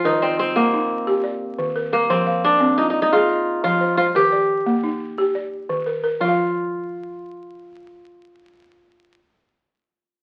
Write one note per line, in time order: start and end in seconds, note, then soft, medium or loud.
0.00 1.40 F4 medium
0.00 0.58 G#4 loud
0.00 0.22 C5 medium
0.05 0.39 D#3 medium
0.05 1.67 D#4 medium
0.05 0.56 A#4 medium
0.22 0.39 C4 medium
0.22 0.73 D5 medium
0.39 2.10 C4 medium
0.56 1.93 A#3 medium
0.56 0.90 A#3 medium
0.73 1.24 D#4 medium
1.07 1.41 G4 medium
1.24 1.75 D5 medium
1.59 1.93 D#3 medium
1.76 1.91 A#4 medium
1.93 3.86 A#3 medium
1.93 2.27 A#4 medium
2.10 2.44 F3 medium
2.10 3.90 C4 medium
2.10 2.61 C5 medium
2.27 2.78 F5 medium
2.44 2.84 D4 loud
2.60 2.95 C4 medium
2.78 2.90 D#4 medium
2.78 3.30 F4 medium
2.90 3.02 D#4 medium
3.02 4.64 D#4 medium
3.12 3.63 F4 medium
3.12 3.46 G#4 medium
3.29 3.81 D#5 medium
3.64 3.98 F3 medium
3.64 3.97 F4 medium
3.81 3.97 C5 medium
3.97 4.03 F4 loud
3.97 4.32 C5 medium
4.15 4.49 D#3 medium
4.15 5.83 G4 medium
4.15 4.66 A#4 medium
4.32 4.84 D5 medium
4.66 5.01 A#3 medium
4.84 5.35 D#4 medium
5.18 5.52 G4 medium
5.35 5.86 D5 medium
5.69 6.03 D#3 medium
5.86 6.02 A#4 medium
6.04 6.38 A#4 medium
6.21 9.21 F3 medium
6.21 9.18 F4 medium
6.25 9.25 F4 medium
6.25 9.29 F5 medium